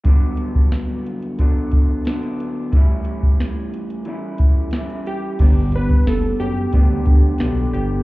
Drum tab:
CC |----------------|----------------|x---------------|
HH |x-x-x-xxx-x-xxx-|x-x-x-xxx-x-xxx-|x-x-x-xxx-x-xxx-|
SD |----o-------o---|----o-------o---|----o-------o---|
BD |o--o----o-o-----|o--o------o-----|o--o----o-o-----|